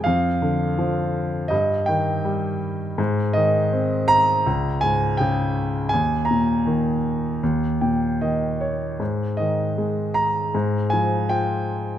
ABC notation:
X:1
M:4/4
L:1/8
Q:1/4=81
K:Ab
V:1 name="Grand piano"
f4 e g2 z | z e2 b2 a g2 | a b2 z2 g e d | z e2 b2 a g2 |]
V:2 name="Grand piano" clef=bass
F,, =D, F,2 G,, E, G,2 | A,, E, C2 D,, A,, D,2 | E,, B,, E,2 E,, B,, E,2 | A,, E, A,2 A,, F, F2 |]